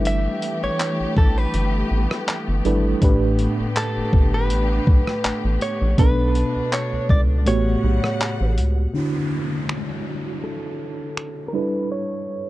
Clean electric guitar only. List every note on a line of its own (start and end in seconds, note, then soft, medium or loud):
0.07 0.63 E5 loud
0.64 1.13 C#5 loud
1.18 1.38 A4 medium
1.38 2.65 B4 medium
3.77 4.34 A4 medium
4.34 5.62 B4 medium
5.62 5.99 C#5 medium
5.99 6.73 B4 loud
6.73 7.10 C#5 loud
7.10 7.20 D5 loud
7.48 8.54 C#5 loud
10.44 11.48 A4 medium
11.48 11.54 A#4 medium
11.55 11.91 B4 medium
11.92 12.50 C#5 medium